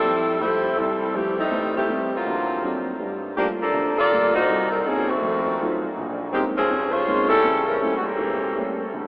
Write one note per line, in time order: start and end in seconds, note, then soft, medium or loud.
0.00 0.35 F2 medium
0.00 0.36 G3 medium
0.00 0.36 C4 medium
0.00 0.36 E4 medium
0.00 0.36 A4 loud
0.40 0.65 F3 soft
0.40 0.65 G3 soft
0.40 0.65 A3 soft
0.40 0.77 A3 medium
0.40 0.77 E4 medium
0.40 0.65 E4 soft
0.40 0.77 G4 medium
0.40 0.77 C5 loud
0.77 1.09 C2 medium
0.77 1.15 G3 medium
0.77 1.14 C4 medium
0.77 1.15 E4 medium
0.77 1.15 A4 loud
1.15 1.38 E3 medium
1.15 1.39 F3 soft
1.15 1.40 G3 soft
1.15 1.38 A3 medium
1.15 1.40 A3 soft
1.15 1.38 C4 medium
1.15 1.40 E4 medium
1.15 1.38 G4 medium
1.39 1.73 G3 medium
1.39 1.73 A3 medium
1.39 1.73 C4 medium
1.39 1.73 D#4 medium
1.52 1.83 A1 medium
1.52 1.83 A2 medium
1.77 2.10 D#3 medium
1.77 2.10 A3 medium
1.77 2.10 C4 medium
1.77 2.10 G4 medium
1.89 2.14 G3 soft
1.89 2.14 A3 soft
1.89 2.14 C4 soft
2.15 2.87 F#3 medium
2.15 2.87 A#3 medium
2.15 2.88 C4 medium
2.15 2.88 F4 medium
2.26 2.58 D2 medium
2.63 2.88 F#3 soft
2.63 2.88 A#3 soft
2.63 2.89 C4 soft
2.63 2.88 D4 soft
3.00 3.32 G2 medium
3.00 3.32 G3 medium
3.37 3.48 F3 medium
3.37 3.62 G3 soft
3.37 3.62 A3 soft
3.37 3.62 A#3 soft
3.37 3.48 A#3 medium
3.37 3.49 D4 medium
3.37 3.62 F4 medium
3.37 3.48 G4 medium
3.62 3.96 F3 medium
3.62 3.96 A#3 medium
3.62 3.96 D4 medium
3.62 3.96 A4 medium
3.74 4.06 D2 medium
3.99 4.33 A#3 medium
3.99 4.33 F4 medium
3.99 4.33 A4 medium
3.99 4.33 D5 medium
4.11 4.36 G3 soft
4.11 4.36 A3 soft
4.11 4.36 A#3 soft
4.11 4.36 F4 medium
4.35 4.69 A#3 medium
4.35 4.69 D#4 medium
4.35 4.69 F#4 medium
4.35 4.69 C5 loud
4.49 4.80 C2 medium
4.71 4.83 F#3 medium
4.71 4.84 C4 medium
4.71 4.83 D#4 medium
4.71 4.84 A#4 medium
4.86 5.09 F3 medium
4.86 5.09 A#3 medium
4.86 5.10 A#3 soft
4.86 5.11 C4 soft
4.86 5.09 C#4 medium
4.86 5.11 D#4 soft
4.86 5.09 G#4 medium
5.09 5.83 D#3 medium
5.09 5.83 A3 medium
5.09 5.83 C4 medium
5.09 5.83 F#4 medium
5.22 5.54 F2 medium
5.22 5.54 A3 medium
5.61 5.85 F#3 medium
5.61 5.85 A3 soft
5.61 5.85 D#4 soft
5.61 5.85 F4 medium
5.97 6.28 A#1 medium
6.33 6.44 D#3 medium
6.33 6.58 G#3 soft
6.33 6.44 G#3 medium
6.33 6.58 A#3 soft
6.33 6.44 C4 medium
6.33 6.58 C4 soft
6.33 6.58 C#4 soft
6.33 6.58 D#4 medium
6.33 6.44 G4 medium
6.57 6.91 F3 medium
6.57 6.91 C4 medium
6.57 6.91 C#4 medium
6.57 6.91 G#4 medium
6.70 7.02 F1 medium
6.93 7.30 G#3 medium
6.93 7.30 F4 medium
6.93 7.30 C5 medium
6.93 7.30 C#5 medium
7.06 7.32 G#3 soft
7.06 7.32 A#3 soft
7.06 7.32 C4 soft
7.06 7.32 C#4 soft
7.06 7.32 D#4 medium
7.29 7.64 G3 medium
7.29 7.64 C#4 medium
7.29 7.64 E4 medium
7.29 7.64 A4 loud
7.43 7.76 A1 medium
7.43 7.75 C#3 medium
7.66 7.78 G3 medium
7.66 7.79 C#4 medium
7.66 7.79 E4 medium
7.66 7.80 A#4 medium
7.80 7.95 G3 medium
7.80 8.06 G3 soft
7.80 8.06 A3 soft
7.80 8.06 A#3 soft
7.80 7.95 C#4 medium
7.80 8.07 C#4 medium
7.80 7.95 E4 medium
7.80 7.95 A4 medium
7.97 8.05 F#4 medium
8.05 8.79 E3 medium
8.05 8.79 A#3 medium
8.05 8.79 C#4 medium
8.05 8.79 G4 medium
8.18 8.50 E1 medium
8.56 8.81 G3 soft
8.56 8.81 A3 soft
8.56 8.81 A#3 soft
8.56 8.81 C#4 soft
8.94 9.07 D2 medium